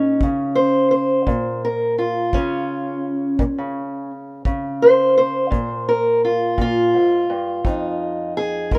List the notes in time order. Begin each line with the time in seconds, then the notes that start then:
Already playing: A#2 C#4 D#4
0.21 C#3, kick
0.55 C5
0.91 C5
1.26 A#2, kick
1.65 A#4
1.98 F4
2.33 C#3 C#4, kick
3.39 A#2, kick
3.58 C#3
4.45 C#3, kick
4.82 C5
5.18 C5
5.51 A#2, kick
5.89 A#4
6.25 F4
6.57 A#2 F4, kick
6.94 G#2
7.30 G2
7.65 F2 D#4, kick
8.37 G#4
8.71 G#3 A#4, kick